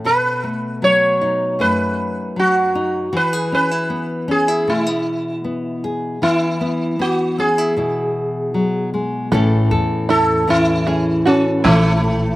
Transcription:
<<
  \new Staff \with { instrumentName = "Sitar" } { \time 4/4 \key a \major \tempo 4 = 78 b'4 cis''4 b'4 fis'4 | b'8 b'4 gis'8 e'4. r8 | e'4 fis'8 gis'2 r8 | r4 a'8 e'4 cis'8 <e a>4 | }
  \new Staff \with { instrumentName = "Five-string banjo" } { \time 4/4 \key a \major r1 | r1 | r1 | a'4 e'4 gis'8 fis'8 e'4 | }
  \new Staff \with { instrumentName = "Nylon-string guitar" } { \time 4/4 \key a \major << { a'8 a4 dis'8 a4. dis'8 | fis'16 gis'16 cis'16 e'8. cis'16 e'16 a16 b8. r8 gis'8 | b8 b8 r8 cis'16 e'16 e'2 | <e cis' e' a'>8 a'8 cis'8 cis'8 cis'8 a'4. | } \\ { b,4 fis4 fis,4 fis4 | e4 b4 b,4 b4 | e4 b4 b,4 fis8 gis8 | a,4. e2 a,8 | } >> }
  \new Staff \with { instrumentName = "Upright bass" } { \clef bass \time 4/4 \key a \major r1 | r1 | r1 | a,,8 e,2 r8 bes,,4 | }
>>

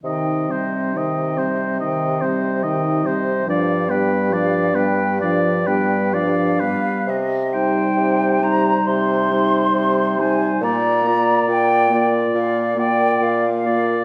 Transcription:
<<
  \new Staff \with { instrumentName = "Flute" } { \time 4/4 \key c \minor \tempo 4 = 69 g''8 ees''8 g''8 ees''8 g''8 ees''8 g''8 ees''8 | f''8 g''8 f''8 g''8 f''8 g''8 f''4 | ees''8 g''4 bes''8 c'''4. aes''8 | bes''4 g''8 r8 f''8 g''8 f''4 | }
  \new Staff \with { instrumentName = "Oboe" } { \time 4/4 \key c \minor ees''8 c''8 ees''8 c''8 ees''8 c''8 ees''8 c''8 | d''8 b'8 d''8 b'8 d''8 b'8 d''8 b'8 | r8 c''4 c''4 c''4 c''8 | d''8 d''4 d''4 d''4 d''8 | }
  \new Staff \with { instrumentName = "Clarinet" } { \time 4/4 \key c \minor ees'8 c'8 ees'8 c'8 ees'8 c'8 ees'8 c'8 | d'8 b8 d'8 b8 d'8 b8 d'8 b8 | r8 ees'4 ees'4 ees'4 ees'8 | f'8 f'4 f'4 f'4 f'8 | }
  \new Staff \with { instrumentName = "French horn" } { \clef bass \time 4/4 \key c \minor ees8 g8 ees8 g8 ees8 g8 ees8 g8 | f8 g8 f8 g8 f8 g8 f8 g8 | r8 g4 g4 g4 g8 | bes8 bes4 bes4 bes4 bes8 | }
  \new Staff \with { instrumentName = "Bassoon" } { \clef bass \time 4/4 \key c \minor c1 | g,2.~ g,8 r8 | c4 c4 c4 c4 | bes,4 bes,4 bes,4 bes,4 | }
>>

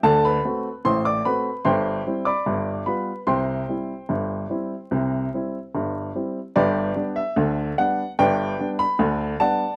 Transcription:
<<
  \new Staff \with { instrumentName = "Upright piano" } { \time 2/4 \key c \major \tempo 4 = 74 <a' a''>16 <b' b''>8. <c'' c'''>16 <d'' d'''>16 <b' b''>8 | <c'' g'' c'''>8. <d'' b'' d'''>8. <b' b''>8 | <c'' g'' c'''>2~ | <c'' g'' c'''>4 r4 |
\key g \major <g' b' d''>8. e''8. fis''8 | <b' d'' g''>8. b''8. <d'' fis'' a''>8 | }
  \new Staff \with { instrumentName = "Upright piano" } { \clef bass \time 2/4 \key c \major <d, d>8 <a c' fis'>8 <a,, a,>8 <a c' fis'>8 | <g,, g,>8 <g c' e'>8 <g,, g,>8 <g b f'>8 | <c, c>8 <g c' e'>8 <g,, g,>8 <g c' e'>8 | <c, c>8 <g c' e'>8 <g,, g,>8 <g c' e'>8 |
\key g \major <g,, g,>8 <g b d'>8 <d, d>8 <g b d'>8 | <g,, g,>8 <g b d'>8 <d, d>8 <g b d'>8 | }
>>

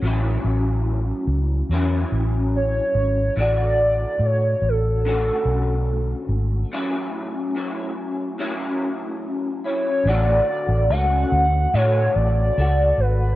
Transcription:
<<
  \new Staff \with { instrumentName = "Soft synth lead" } { \time 4/4 \key d \lydian \tempo 4 = 72 r2. cis''4 | d''4 cis''8 a'2 r8 | r2. r8 cis''8 | d''4 fis''4 cis''8 d''4 b'8 | }
  \new Staff \with { instrumentName = "Clean electric guitar" } { \time 4/4 \key d \lydian <a, fis cis' e'>2 <fis cis' e'>2 | <a, d a fis'>2 <d a cis' fis'>2 | <a, fis cis' e'>4 <a, fis cis' e'>4 <a, fis cis' e'>4. <fis cis' e'>8 | <a, d a fis'>4 <a cis' fis'>4 <a, d a fis'>4 <a fis'>4 | }
  \new Staff \with { instrumentName = "Fingered electric bass" } { \clef bass \time 4/4 \key d \lydian a,,8 a,,4 cis,8 e,8 a,,4 gis,,8 | a,,4 a,8 a,,4 b,,4 gis,,8 | r1 | a,,8 r16 a,,16 cis,8 d,8 a,8 a,,8 cis,8 gis,,8 | }
>>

